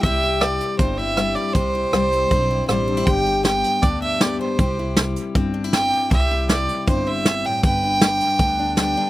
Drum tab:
HH |x-xxx-x-|x-xxx-x-|x-xxx-x-|x-xxx-x-|
SD |--r---r-|--r---r-|--o---o-|--o---o-|
BD |o---o---|o---o---|o---o---|o---o---|

HH |x-xxx-x-|x-xxx-x-|
SD |--o---o-|--o---o-|
BD |o---o---|o---o---|